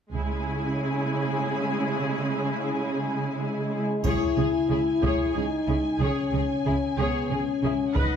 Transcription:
0.13 C#2 C#3 G#3 E4 G#4 G#5
3.40 G#3
4.04 C#2 C#3 E4 G#4 C#5 G#5, taiko, triangle
4.37 C#2 C#3 G#4
4.69 C#2 C#3 E4 G#4
5.02 C#2 C#3 G#4 C#5, taiko
5.34 C#2 C#3 D#4 G#4
5.68 C#2 C#3 E4 G#4
6.00 C#2 C#3 C#4 G#4 C#5
6.32 C#2 C#3 G#4
6.37 G#4
6.65 C#2 C#3 E4 G#4
6.98 C#2 C#3 B3 G#4 C#5
7.30 C#2 C#3 C#4 G#4
7.63 C#2 C#3 E4 G#4
7.95 C#2 C#3 D#4 B4 F#5, taiko
7.99 D#5

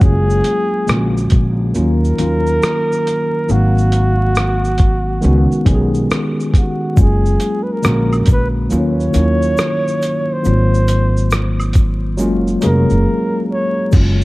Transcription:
Already playing: G#4 C#5
0.00 F#1 F#3 G#3 A#3 C#4 F4 G#4, kick, shaker
0.30 shaker
0.44 closed hi-hat, shaker
0.87 A#1 D3 G#3 A#3 C#4 F4, cross-stick, shaker
0.97 F#4
1.17 shaker
1.30 A#1, kick, closed hi-hat, shaker
1.74 D#2 D#3 F#3 A#3 C#4 F4 A#4, shaker
2.05 shaker
2.18 D#2 D#3 F#3 A#3 C#4 F4, closed hi-hat, shaker
2.47 shaker
2.62 cross-stick, shaker
2.92 shaker
3.07 closed hi-hat, shaker
3.48 G#1 D#3 F#3 A#3 C4 F#4 F5, shaker
3.78 shaker
3.92 closed hi-hat, shaker
4.35 cross-stick, shaker
4.64 shaker
4.78 kick, closed hi-hat, shaker
5.21 C#2 D#3 G#3 B3 C#4 F#4, shaker
5.52 muted upright bass stroke, shaker
5.65 B1 D#3 G#3 B3 C#4 G4, kick, closed hi-hat, shaker
5.75 G#4
5.94 shaker
6.11 cross-stick, shaker
6.40 shaker
6.51 G#4, kick, closed hi-hat, shaker
6.58 F#4
6.95 F#1 F#3 G#3 A#3 C#4 F4, kick, shaker
7.01 G#4
7.26 shaker
7.40 closed hi-hat, shaker
7.63 B4
7.73 A#4
7.82 A#1 D3 G#3 A#3 C#4 F#4, cross-stick, shaker
8.13 high woodblock, shaker
8.26 kick, closed hi-hat, shaker
8.28 A#1, shaker
8.33 B4
8.69 D#2 D#3 F#3 A#3 C#4, shaker
8.72 F4, shaker
8.76 C#5
9.00 shaker
9.12 D#2 D#3 F#3 A#3 C#4 E4, closed hi-hat, shaker
9.22 F4
9.42 shaker
9.57 cross-stick, shaker
9.88 shaker
10.02 closed hi-hat, shaker
10.33 C5
10.43 G#1 D#3 F#3 A#3 C4 F4, shaker
10.74 shaker
10.88 closed hi-hat, shaker
11.17 shaker
11.31 cross-stick, shaker
11.60 high woodblock, shaker
11.73 closed hi-hat, shaker
11.75 kick, shaker
12.17 F#1 F#3 G#3 A#3 C#4 F4, shaker
12.47 shaker
12.61 F1 F#3 G#3 A#3 C#4 G#4, closed hi-hat, shaker
12.65 A#4
12.90 F#1, shaker
13.52 C#5
13.91 F#1 F#3 G#3 A#3 C#4 F4, kick, crash, shaker

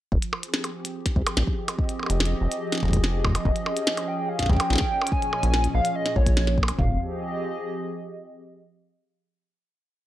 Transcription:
0.12 F1 F3, kick
0.22 closed hi-hat
0.33 G#4, percussion blips
0.43 C4, closed hi-hat
0.52 G4, snare
0.64 closed hi-hat, percussion blips
0.85 closed hi-hat
1.06 kick, snare, closed hi-hat
1.16 C2, kick
1.27 closed hi-hat, percussion blips
1.37 A#1, snare
1.47 kick
1.62 D#5
1.68 closed hi-hat, percussion blips
1.79 kick
1.89 closed hi-hat
1.99 percussion blips
2.03 percussion blips
2.06 F1, closed hi-hat, percussion blips
2.20 snare
2.25 closed hi-hat
2.41 F1
2.52 closed hi-hat
2.72 snare, closed hi-hat
2.75 snare
2.78 snare
2.80 F1, kick, snare
2.83 snare
2.85 snare
2.88 kick, snare
2.93 kick, closed hi-hat
2.97 kick
3.04 snare
3.24 kick, percussion blips
3.27 kick
3.30 kick
3.32 kick, closed hi-hat, percussion blips
3.45 F1 D#5, kick
3.56 C#4, closed hi-hat
3.66 percussion blips
3.77 closed hi-hat
3.87 snare
3.97 closed hi-hat, percussion blips
4.08 G5
4.20 C#5
4.29 F5
4.39 kick, snare, closed hi-hat
4.43 kick, snare
4.46 kick, snare
4.49 C2 G5, kick, snare
4.53 kick, snare
4.56 kick, snare, closed hi-hat, percussion blips
4.70 A#1, snare
4.73 snare
4.76 snare
4.78 kick, snare
5.02 percussion blips
5.07 closed hi-hat
5.12 A#2 G#5, kick
5.22 closed hi-hat
5.33 percussion blips
5.43 A#1, closed hi-hat
5.54 snare
5.64 closed hi-hat
5.74 A#1 F5
5.85 closed hi-hat
5.95 D#5
6.06 snare, closed hi-hat
6.16 A#1 C#5, kick
6.27 kick, closed hi-hat
6.37 snare
6.47 snare
6.58 kick
6.63 percussion blips
6.68 closed hi-hat, percussion blips
6.79 F1 F3 F5, kick, floor tom
6.85 C4
6.91 G4
6.97 G#4
7.04 D#5

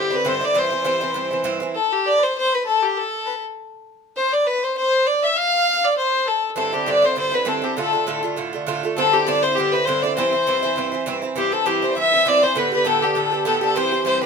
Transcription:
Already playing: G2 D3 C4 G4
0.10 D3 C4 E4 B4
0.15 B4
0.22 G2 D3 B4 C5
0.26 C4 E4 C5
0.41 D3 C4 E4 D5
0.54 G2 E3 C4 E4 C5
0.70 E3 C4 E4
0.81 G2 D5
0.85 E3 C4 E4 C5
1.01 E3 C4 E4
1.11 G2 B4 C5
1.15 E3 C4 E4
1.31 E3 C4 E4
1.44 G2 E3 C4 E4
1.60 E3 C4 E4
1.74 A4
1.92 G4
2.05 D5
2.18 B4
2.23 C5
2.35 C5
2.52 B4
2.65 A4
2.82 G4
2.96 A4
3.26 B4
4.16 C5
4.31 D5
4.46 B4
4.63 C5
4.77 C5
5.06 D5
5.23 E5
5.36 F5
5.84 D5
5.97 C5
6.25 A4
6.55 G2 D3 C4 E4 A4
6.73 D3 C4 E4 G4
6.86 G2 D3 C4 E4 D5
7.02 D3 C4 E4 C5
7.15 G2 D3 C4 E4 C5
7.32 D3 C4 E4 B4
7.45 G2 D3 C4 E4 A4
7.62 D3 C4 E4 G4
7.77 A2 D3 A3 F4 A4
7.93 D3 A3 F4
8.07 A2 D3 A3 F4
8.23 D3 A3 F4
8.36 A2 D3 A3 F4
8.53 D3 A3 F4
8.67 A2 D3 A3 F4
8.83 D3 A3 F4
8.96 G2 D3 C4 E4 A4
9.13 D3 C4 E4 G4
9.26 G2 D3 C4 E4 D5
9.42 D3 C4 E4 C5
9.55 G2 D3 G4
9.59 C4 E4
9.71 C4 E4 B4
9.76 D3
9.85 G2 D3 C4 C5
9.89 E4
10.02 D3 C4 E4 D5
10.15 G2 E3 C4 E4 C5
10.33 E3 C4 E4
10.47 G2 E3 C4 E4
10.63 E3 C4 E4
10.76 G2 E3 C4 E4
10.92 E3 C4 E4
11.06 G2 E3 C4 E4
11.22 E3 C4 E4
11.36 G2 E3 C4 E4 G4
11.52 E3 C4 E4 A4
11.66 G2 E3 C4 E4 G4
11.82 E3 C4 E4 C5
11.90 D5
11.95 G2 E3 C4 E4 E5
12.12 E3 C4 E4
12.25 G2 E3 C4 E4 D5
12.42 E3 C4 E4 C5
12.55 A2 D3 B3 G4 B4
12.72 D3 B3 G4 B4
12.85 A2 D3 B3 G4 A4
13.02 D3 B3 G4
13.15 A2 D3 B3 G4 A4
13.31 D3 B3 G4
13.45 A2 D3 B3 G4 A4
13.61 D3 B3 G4 A4
13.75 G2 E3 C4 G4 C5
13.92 E3 C4 G4
14.04 G2 E3 C4 G4 C5
14.21 G4 B4

